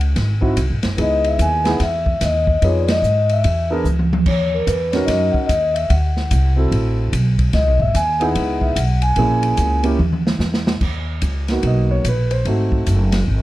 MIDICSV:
0, 0, Header, 1, 6, 480
1, 0, Start_track
1, 0, Tempo, 409836
1, 1150, Time_signature, 4, 2, 24, 8
1, 15718, End_track
2, 0, Start_track
2, 0, Title_t, "Vibraphone"
2, 0, Program_c, 0, 11
2, 1186, Note_on_c, 0, 75, 89
2, 1484, Note_off_c, 0, 75, 0
2, 1488, Note_on_c, 0, 76, 81
2, 1635, Note_off_c, 0, 76, 0
2, 1659, Note_on_c, 0, 80, 98
2, 1960, Note_off_c, 0, 80, 0
2, 1974, Note_on_c, 0, 78, 82
2, 2118, Note_off_c, 0, 78, 0
2, 2142, Note_on_c, 0, 76, 78
2, 2620, Note_off_c, 0, 76, 0
2, 2623, Note_on_c, 0, 75, 80
2, 3085, Note_on_c, 0, 73, 78
2, 3100, Note_off_c, 0, 75, 0
2, 3265, Note_off_c, 0, 73, 0
2, 3290, Note_on_c, 0, 74, 60
2, 3386, Note_off_c, 0, 74, 0
2, 3399, Note_on_c, 0, 75, 78
2, 3881, Note_off_c, 0, 75, 0
2, 3887, Note_on_c, 0, 76, 70
2, 4318, Note_off_c, 0, 76, 0
2, 5007, Note_on_c, 0, 73, 82
2, 5313, Note_off_c, 0, 73, 0
2, 5319, Note_on_c, 0, 70, 71
2, 5469, Note_on_c, 0, 71, 78
2, 5485, Note_off_c, 0, 70, 0
2, 5758, Note_on_c, 0, 73, 72
2, 5784, Note_off_c, 0, 71, 0
2, 5839, Note_off_c, 0, 73, 0
2, 5922, Note_on_c, 0, 75, 81
2, 6229, Note_on_c, 0, 78, 78
2, 6251, Note_off_c, 0, 75, 0
2, 6399, Note_on_c, 0, 75, 93
2, 6420, Note_off_c, 0, 78, 0
2, 6697, Note_off_c, 0, 75, 0
2, 6718, Note_on_c, 0, 76, 74
2, 6903, Note_on_c, 0, 78, 79
2, 6904, Note_off_c, 0, 76, 0
2, 7644, Note_off_c, 0, 78, 0
2, 8830, Note_on_c, 0, 75, 80
2, 9113, Note_off_c, 0, 75, 0
2, 9137, Note_on_c, 0, 76, 81
2, 9295, Note_off_c, 0, 76, 0
2, 9323, Note_on_c, 0, 80, 95
2, 9623, Note_on_c, 0, 78, 93
2, 9629, Note_off_c, 0, 80, 0
2, 10087, Note_on_c, 0, 76, 69
2, 10111, Note_off_c, 0, 78, 0
2, 10250, Note_on_c, 0, 78, 86
2, 10267, Note_off_c, 0, 76, 0
2, 10542, Note_off_c, 0, 78, 0
2, 10566, Note_on_c, 0, 80, 82
2, 11481, Note_off_c, 0, 80, 0
2, 15718, End_track
3, 0, Start_track
3, 0, Title_t, "Grand piano"
3, 0, Program_c, 1, 0
3, 479, Note_on_c, 1, 60, 57
3, 485, Note_on_c, 1, 63, 59
3, 493, Note_on_c, 1, 64, 61
3, 494, Note_on_c, 1, 66, 74
3, 644, Note_off_c, 1, 60, 0
3, 647, Note_off_c, 1, 63, 0
3, 651, Note_off_c, 1, 64, 0
3, 651, Note_off_c, 1, 66, 0
3, 1134, Note_on_c, 1, 59, 55
3, 1151, Note_on_c, 1, 63, 50
3, 1156, Note_on_c, 1, 68, 58
3, 1158, Note_on_c, 1, 64, 47
3, 1867, Note_off_c, 1, 59, 0
3, 1876, Note_off_c, 1, 63, 0
3, 1878, Note_off_c, 1, 68, 0
3, 1879, Note_off_c, 1, 64, 0
3, 1924, Note_on_c, 1, 59, 66
3, 1936, Note_on_c, 1, 63, 60
3, 1944, Note_on_c, 1, 64, 59
3, 1951, Note_on_c, 1, 68, 76
3, 2086, Note_off_c, 1, 59, 0
3, 2092, Note_off_c, 1, 63, 0
3, 2096, Note_off_c, 1, 64, 0
3, 2100, Note_off_c, 1, 68, 0
3, 3074, Note_on_c, 1, 59, 58
3, 3090, Note_on_c, 1, 63, 50
3, 3095, Note_on_c, 1, 65, 54
3, 3101, Note_on_c, 1, 68, 59
3, 3348, Note_off_c, 1, 59, 0
3, 3356, Note_off_c, 1, 63, 0
3, 3358, Note_off_c, 1, 65, 0
3, 3361, Note_off_c, 1, 68, 0
3, 4338, Note_on_c, 1, 59, 69
3, 4342, Note_on_c, 1, 62, 64
3, 4356, Note_on_c, 1, 70, 75
3, 4357, Note_on_c, 1, 68, 63
3, 4492, Note_off_c, 1, 59, 0
3, 4494, Note_off_c, 1, 62, 0
3, 4501, Note_off_c, 1, 70, 0
3, 4502, Note_off_c, 1, 68, 0
3, 5777, Note_on_c, 1, 61, 65
3, 5789, Note_on_c, 1, 63, 54
3, 5793, Note_on_c, 1, 66, 59
3, 5802, Note_on_c, 1, 70, 73
3, 6393, Note_off_c, 1, 61, 0
3, 6400, Note_off_c, 1, 63, 0
3, 6401, Note_off_c, 1, 66, 0
3, 6406, Note_off_c, 1, 70, 0
3, 7685, Note_on_c, 1, 60, 58
3, 7692, Note_on_c, 1, 64, 51
3, 7705, Note_on_c, 1, 66, 49
3, 7709, Note_on_c, 1, 69, 60
3, 8307, Note_off_c, 1, 60, 0
3, 8310, Note_off_c, 1, 64, 0
3, 8317, Note_off_c, 1, 66, 0
3, 8319, Note_off_c, 1, 69, 0
3, 9604, Note_on_c, 1, 59, 64
3, 9611, Note_on_c, 1, 63, 62
3, 9613, Note_on_c, 1, 64, 60
3, 9628, Note_on_c, 1, 68, 71
3, 10226, Note_off_c, 1, 59, 0
3, 10229, Note_off_c, 1, 63, 0
3, 10230, Note_off_c, 1, 64, 0
3, 10238, Note_off_c, 1, 68, 0
3, 10740, Note_on_c, 1, 58, 57
3, 10747, Note_on_c, 1, 64, 55
3, 10748, Note_on_c, 1, 61, 55
3, 10761, Note_on_c, 1, 68, 68
3, 11467, Note_off_c, 1, 58, 0
3, 11471, Note_off_c, 1, 61, 0
3, 11471, Note_off_c, 1, 64, 0
3, 11478, Note_off_c, 1, 68, 0
3, 11514, Note_on_c, 1, 58, 66
3, 11521, Note_on_c, 1, 61, 59
3, 11533, Note_on_c, 1, 64, 54
3, 11533, Note_on_c, 1, 67, 65
3, 11678, Note_off_c, 1, 58, 0
3, 11682, Note_off_c, 1, 61, 0
3, 11687, Note_off_c, 1, 67, 0
3, 11688, Note_off_c, 1, 64, 0
3, 13463, Note_on_c, 1, 58, 54
3, 13469, Note_on_c, 1, 59, 48
3, 13477, Note_on_c, 1, 63, 52
3, 13485, Note_on_c, 1, 66, 62
3, 13669, Note_on_c, 1, 75, 67
3, 13945, Note_off_c, 1, 75, 0
3, 13947, Note_on_c, 1, 73, 76
3, 14076, Note_off_c, 1, 58, 0
3, 14079, Note_off_c, 1, 59, 0
3, 14083, Note_off_c, 1, 63, 0
3, 14088, Note_off_c, 1, 66, 0
3, 14108, Note_off_c, 1, 73, 0
3, 14150, Note_on_c, 1, 71, 67
3, 14418, Note_on_c, 1, 72, 66
3, 14426, Note_off_c, 1, 71, 0
3, 14598, Note_on_c, 1, 57, 56
3, 14602, Note_on_c, 1, 60, 47
3, 14611, Note_on_c, 1, 63, 47
3, 14621, Note_on_c, 1, 66, 60
3, 15023, Note_off_c, 1, 72, 0
3, 15318, Note_off_c, 1, 57, 0
3, 15320, Note_off_c, 1, 60, 0
3, 15325, Note_off_c, 1, 63, 0
3, 15330, Note_off_c, 1, 66, 0
3, 15718, End_track
4, 0, Start_track
4, 0, Title_t, "Upright bass"
4, 0, Program_c, 2, 32
4, 0, Note_on_c, 2, 37, 87
4, 172, Note_off_c, 2, 37, 0
4, 185, Note_on_c, 2, 32, 79
4, 653, Note_off_c, 2, 32, 0
4, 667, Note_on_c, 2, 36, 75
4, 823, Note_on_c, 2, 32, 57
4, 840, Note_off_c, 2, 36, 0
4, 987, Note_off_c, 2, 32, 0
4, 992, Note_on_c, 2, 30, 61
4, 1140, Note_off_c, 2, 30, 0
4, 1150, Note_on_c, 2, 37, 85
4, 1616, Note_off_c, 2, 37, 0
4, 1627, Note_on_c, 2, 39, 89
4, 2094, Note_off_c, 2, 39, 0
4, 2107, Note_on_c, 2, 40, 79
4, 2574, Note_off_c, 2, 40, 0
4, 2588, Note_on_c, 2, 39, 82
4, 3054, Note_off_c, 2, 39, 0
4, 3067, Note_on_c, 2, 41, 77
4, 3530, Note_off_c, 2, 41, 0
4, 3537, Note_on_c, 2, 44, 82
4, 4008, Note_off_c, 2, 44, 0
4, 4037, Note_on_c, 2, 40, 81
4, 4492, Note_off_c, 2, 40, 0
4, 4499, Note_on_c, 2, 37, 74
4, 4969, Note_off_c, 2, 37, 0
4, 4997, Note_on_c, 2, 39, 74
4, 5458, Note_off_c, 2, 39, 0
4, 5469, Note_on_c, 2, 40, 82
4, 5933, Note_off_c, 2, 40, 0
4, 5945, Note_on_c, 2, 42, 78
4, 6231, Note_off_c, 2, 42, 0
4, 6428, Note_on_c, 2, 39, 79
4, 6893, Note_off_c, 2, 39, 0
4, 6909, Note_on_c, 2, 38, 79
4, 7373, Note_off_c, 2, 38, 0
4, 7391, Note_on_c, 2, 36, 89
4, 7854, Note_off_c, 2, 36, 0
4, 7864, Note_on_c, 2, 33, 84
4, 8330, Note_off_c, 2, 33, 0
4, 8348, Note_on_c, 2, 35, 82
4, 8812, Note_off_c, 2, 35, 0
4, 8826, Note_on_c, 2, 37, 79
4, 8989, Note_off_c, 2, 37, 0
4, 8989, Note_on_c, 2, 35, 54
4, 9133, Note_off_c, 2, 35, 0
4, 9140, Note_on_c, 2, 32, 67
4, 9291, Note_off_c, 2, 32, 0
4, 9305, Note_on_c, 2, 39, 88
4, 9770, Note_off_c, 2, 39, 0
4, 9790, Note_on_c, 2, 37, 87
4, 10250, Note_off_c, 2, 37, 0
4, 10257, Note_on_c, 2, 35, 75
4, 10726, Note_off_c, 2, 35, 0
4, 10731, Note_on_c, 2, 34, 78
4, 11203, Note_off_c, 2, 34, 0
4, 11220, Note_on_c, 2, 37, 89
4, 11687, Note_off_c, 2, 37, 0
4, 11701, Note_on_c, 2, 39, 86
4, 12162, Note_off_c, 2, 39, 0
4, 12169, Note_on_c, 2, 40, 78
4, 12642, Note_off_c, 2, 40, 0
4, 12666, Note_on_c, 2, 39, 70
4, 13131, Note_off_c, 2, 39, 0
4, 13142, Note_on_c, 2, 37, 77
4, 13609, Note_off_c, 2, 37, 0
4, 13622, Note_on_c, 2, 35, 81
4, 14090, Note_off_c, 2, 35, 0
4, 14104, Note_on_c, 2, 34, 78
4, 14571, Note_off_c, 2, 34, 0
4, 14585, Note_on_c, 2, 32, 71
4, 15052, Note_off_c, 2, 32, 0
4, 15075, Note_on_c, 2, 30, 83
4, 15537, Note_off_c, 2, 30, 0
4, 15553, Note_on_c, 2, 32, 82
4, 15718, Note_off_c, 2, 32, 0
4, 15718, End_track
5, 0, Start_track
5, 0, Title_t, "Muted upright bass strokes"
5, 6263, Note_on_c, 9, 29, 34
5, 6381, Note_off_c, 9, 29, 0
5, 15718, End_track
6, 0, Start_track
6, 0, Title_t, "Drums"
6, 8, Note_on_c, 9, 51, 42
6, 126, Note_off_c, 9, 51, 0
6, 187, Note_on_c, 9, 51, 54
6, 188, Note_on_c, 9, 36, 20
6, 191, Note_on_c, 9, 38, 35
6, 304, Note_off_c, 9, 51, 0
6, 306, Note_off_c, 9, 36, 0
6, 308, Note_off_c, 9, 38, 0
6, 494, Note_on_c, 9, 36, 50
6, 612, Note_off_c, 9, 36, 0
6, 664, Note_on_c, 9, 44, 53
6, 664, Note_on_c, 9, 51, 58
6, 667, Note_on_c, 9, 36, 23
6, 781, Note_off_c, 9, 44, 0
6, 781, Note_off_c, 9, 51, 0
6, 785, Note_off_c, 9, 36, 0
6, 969, Note_on_c, 9, 51, 47
6, 972, Note_on_c, 9, 38, 47
6, 1086, Note_off_c, 9, 51, 0
6, 1089, Note_off_c, 9, 38, 0
6, 1148, Note_on_c, 9, 36, 20
6, 1148, Note_on_c, 9, 51, 52
6, 1265, Note_off_c, 9, 36, 0
6, 1265, Note_off_c, 9, 51, 0
6, 1456, Note_on_c, 9, 51, 40
6, 1573, Note_off_c, 9, 51, 0
6, 1628, Note_on_c, 9, 36, 24
6, 1629, Note_on_c, 9, 44, 55
6, 1629, Note_on_c, 9, 51, 56
6, 1745, Note_off_c, 9, 36, 0
6, 1746, Note_off_c, 9, 44, 0
6, 1746, Note_off_c, 9, 51, 0
6, 1935, Note_on_c, 9, 51, 43
6, 1938, Note_on_c, 9, 38, 55
6, 2052, Note_off_c, 9, 51, 0
6, 2055, Note_off_c, 9, 38, 0
6, 2106, Note_on_c, 9, 51, 53
6, 2108, Note_on_c, 9, 36, 17
6, 2109, Note_on_c, 9, 38, 35
6, 2223, Note_off_c, 9, 51, 0
6, 2225, Note_off_c, 9, 36, 0
6, 2226, Note_off_c, 9, 38, 0
6, 2416, Note_on_c, 9, 36, 54
6, 2533, Note_off_c, 9, 36, 0
6, 2588, Note_on_c, 9, 44, 61
6, 2588, Note_on_c, 9, 51, 56
6, 2589, Note_on_c, 9, 36, 21
6, 2591, Note_on_c, 9, 38, 34
6, 2705, Note_off_c, 9, 44, 0
6, 2705, Note_off_c, 9, 51, 0
6, 2706, Note_off_c, 9, 36, 0
6, 2708, Note_off_c, 9, 38, 0
6, 2896, Note_on_c, 9, 36, 51
6, 3013, Note_off_c, 9, 36, 0
6, 3069, Note_on_c, 9, 51, 52
6, 3071, Note_on_c, 9, 36, 18
6, 3186, Note_off_c, 9, 51, 0
6, 3188, Note_off_c, 9, 36, 0
6, 3376, Note_on_c, 9, 51, 61
6, 3380, Note_on_c, 9, 38, 67
6, 3493, Note_off_c, 9, 51, 0
6, 3497, Note_off_c, 9, 38, 0
6, 3556, Note_on_c, 9, 44, 54
6, 3673, Note_off_c, 9, 44, 0
6, 3857, Note_on_c, 9, 51, 44
6, 3975, Note_off_c, 9, 51, 0
6, 4029, Note_on_c, 9, 51, 59
6, 4032, Note_on_c, 9, 36, 24
6, 4146, Note_off_c, 9, 51, 0
6, 4149, Note_off_c, 9, 36, 0
6, 4510, Note_on_c, 9, 44, 43
6, 4513, Note_on_c, 9, 47, 39
6, 4627, Note_off_c, 9, 44, 0
6, 4630, Note_off_c, 9, 47, 0
6, 4672, Note_on_c, 9, 47, 51
6, 4789, Note_off_c, 9, 47, 0
6, 4836, Note_on_c, 9, 47, 81
6, 4953, Note_off_c, 9, 47, 0
6, 4987, Note_on_c, 9, 49, 61
6, 4991, Note_on_c, 9, 36, 63
6, 5105, Note_off_c, 9, 49, 0
6, 5108, Note_off_c, 9, 36, 0
6, 5471, Note_on_c, 9, 36, 17
6, 5473, Note_on_c, 9, 44, 49
6, 5473, Note_on_c, 9, 51, 53
6, 5588, Note_off_c, 9, 36, 0
6, 5590, Note_off_c, 9, 44, 0
6, 5590, Note_off_c, 9, 51, 0
6, 5773, Note_on_c, 9, 51, 45
6, 5777, Note_on_c, 9, 38, 35
6, 5890, Note_off_c, 9, 51, 0
6, 5894, Note_off_c, 9, 38, 0
6, 5949, Note_on_c, 9, 51, 61
6, 5950, Note_on_c, 9, 36, 23
6, 5953, Note_on_c, 9, 38, 36
6, 6066, Note_off_c, 9, 51, 0
6, 6067, Note_off_c, 9, 36, 0
6, 6070, Note_off_c, 9, 38, 0
6, 6257, Note_on_c, 9, 36, 49
6, 6374, Note_off_c, 9, 36, 0
6, 6431, Note_on_c, 9, 36, 23
6, 6432, Note_on_c, 9, 44, 53
6, 6432, Note_on_c, 9, 51, 54
6, 6548, Note_off_c, 9, 36, 0
6, 6549, Note_off_c, 9, 44, 0
6, 6549, Note_off_c, 9, 51, 0
6, 6743, Note_on_c, 9, 51, 46
6, 6860, Note_off_c, 9, 51, 0
6, 6909, Note_on_c, 9, 51, 56
6, 6911, Note_on_c, 9, 36, 17
6, 7027, Note_off_c, 9, 51, 0
6, 7028, Note_off_c, 9, 36, 0
6, 7223, Note_on_c, 9, 38, 32
6, 7340, Note_off_c, 9, 38, 0
6, 7388, Note_on_c, 9, 44, 48
6, 7388, Note_on_c, 9, 51, 59
6, 7390, Note_on_c, 9, 36, 23
6, 7505, Note_off_c, 9, 44, 0
6, 7505, Note_off_c, 9, 51, 0
6, 7508, Note_off_c, 9, 36, 0
6, 7870, Note_on_c, 9, 36, 22
6, 7872, Note_on_c, 9, 51, 50
6, 7987, Note_off_c, 9, 36, 0
6, 7989, Note_off_c, 9, 51, 0
6, 8348, Note_on_c, 9, 36, 23
6, 8349, Note_on_c, 9, 44, 45
6, 8349, Note_on_c, 9, 51, 61
6, 8465, Note_off_c, 9, 36, 0
6, 8466, Note_off_c, 9, 44, 0
6, 8466, Note_off_c, 9, 51, 0
6, 8651, Note_on_c, 9, 36, 50
6, 8653, Note_on_c, 9, 51, 46
6, 8769, Note_off_c, 9, 36, 0
6, 8770, Note_off_c, 9, 51, 0
6, 8820, Note_on_c, 9, 51, 49
6, 8823, Note_on_c, 9, 38, 34
6, 8825, Note_on_c, 9, 36, 18
6, 8937, Note_off_c, 9, 51, 0
6, 8940, Note_off_c, 9, 38, 0
6, 8942, Note_off_c, 9, 36, 0
6, 9132, Note_on_c, 9, 36, 54
6, 9249, Note_off_c, 9, 36, 0
6, 9305, Note_on_c, 9, 36, 18
6, 9306, Note_on_c, 9, 44, 59
6, 9306, Note_on_c, 9, 51, 61
6, 9422, Note_off_c, 9, 36, 0
6, 9424, Note_off_c, 9, 44, 0
6, 9424, Note_off_c, 9, 51, 0
6, 9612, Note_on_c, 9, 51, 43
6, 9729, Note_off_c, 9, 51, 0
6, 9783, Note_on_c, 9, 51, 57
6, 9784, Note_on_c, 9, 36, 26
6, 9900, Note_off_c, 9, 51, 0
6, 9901, Note_off_c, 9, 36, 0
6, 10089, Note_on_c, 9, 36, 47
6, 10206, Note_off_c, 9, 36, 0
6, 10261, Note_on_c, 9, 36, 20
6, 10263, Note_on_c, 9, 44, 60
6, 10263, Note_on_c, 9, 51, 66
6, 10378, Note_off_c, 9, 36, 0
6, 10380, Note_off_c, 9, 44, 0
6, 10380, Note_off_c, 9, 51, 0
6, 10560, Note_on_c, 9, 51, 47
6, 10677, Note_off_c, 9, 51, 0
6, 10725, Note_on_c, 9, 51, 48
6, 10737, Note_on_c, 9, 36, 18
6, 10843, Note_off_c, 9, 51, 0
6, 10854, Note_off_c, 9, 36, 0
6, 11041, Note_on_c, 9, 51, 47
6, 11158, Note_off_c, 9, 51, 0
6, 11211, Note_on_c, 9, 44, 50
6, 11211, Note_on_c, 9, 51, 55
6, 11218, Note_on_c, 9, 36, 17
6, 11328, Note_off_c, 9, 44, 0
6, 11328, Note_off_c, 9, 51, 0
6, 11335, Note_off_c, 9, 36, 0
6, 11519, Note_on_c, 9, 51, 46
6, 11636, Note_off_c, 9, 51, 0
6, 11697, Note_on_c, 9, 47, 46
6, 11814, Note_off_c, 9, 47, 0
6, 11859, Note_on_c, 9, 47, 51
6, 11976, Note_off_c, 9, 47, 0
6, 12025, Note_on_c, 9, 38, 64
6, 12142, Note_off_c, 9, 38, 0
6, 12181, Note_on_c, 9, 44, 46
6, 12184, Note_on_c, 9, 38, 58
6, 12298, Note_off_c, 9, 44, 0
6, 12302, Note_off_c, 9, 38, 0
6, 12342, Note_on_c, 9, 38, 62
6, 12459, Note_off_c, 9, 38, 0
6, 12498, Note_on_c, 9, 38, 86
6, 12616, Note_off_c, 9, 38, 0
6, 12659, Note_on_c, 9, 49, 59
6, 12660, Note_on_c, 9, 36, 60
6, 12776, Note_off_c, 9, 49, 0
6, 12778, Note_off_c, 9, 36, 0
6, 13136, Note_on_c, 9, 44, 43
6, 13136, Note_on_c, 9, 51, 51
6, 13141, Note_on_c, 9, 36, 22
6, 13253, Note_off_c, 9, 44, 0
6, 13253, Note_off_c, 9, 51, 0
6, 13258, Note_off_c, 9, 36, 0
6, 13448, Note_on_c, 9, 51, 43
6, 13451, Note_on_c, 9, 38, 34
6, 13565, Note_off_c, 9, 51, 0
6, 13569, Note_off_c, 9, 38, 0
6, 13618, Note_on_c, 9, 51, 48
6, 13624, Note_on_c, 9, 36, 20
6, 13736, Note_off_c, 9, 51, 0
6, 13741, Note_off_c, 9, 36, 0
6, 14106, Note_on_c, 9, 36, 19
6, 14108, Note_on_c, 9, 44, 49
6, 14108, Note_on_c, 9, 51, 62
6, 14224, Note_off_c, 9, 36, 0
6, 14225, Note_off_c, 9, 44, 0
6, 14225, Note_off_c, 9, 51, 0
6, 14413, Note_on_c, 9, 51, 42
6, 14531, Note_off_c, 9, 51, 0
6, 14585, Note_on_c, 9, 51, 47
6, 14589, Note_on_c, 9, 36, 16
6, 14702, Note_off_c, 9, 51, 0
6, 14706, Note_off_c, 9, 36, 0
6, 14897, Note_on_c, 9, 36, 59
6, 15014, Note_off_c, 9, 36, 0
6, 15067, Note_on_c, 9, 44, 51
6, 15067, Note_on_c, 9, 51, 54
6, 15071, Note_on_c, 9, 36, 20
6, 15184, Note_off_c, 9, 44, 0
6, 15184, Note_off_c, 9, 51, 0
6, 15188, Note_off_c, 9, 36, 0
6, 15369, Note_on_c, 9, 51, 60
6, 15373, Note_on_c, 9, 38, 49
6, 15486, Note_off_c, 9, 51, 0
6, 15490, Note_off_c, 9, 38, 0
6, 15552, Note_on_c, 9, 36, 20
6, 15669, Note_off_c, 9, 36, 0
6, 15718, End_track
0, 0, End_of_file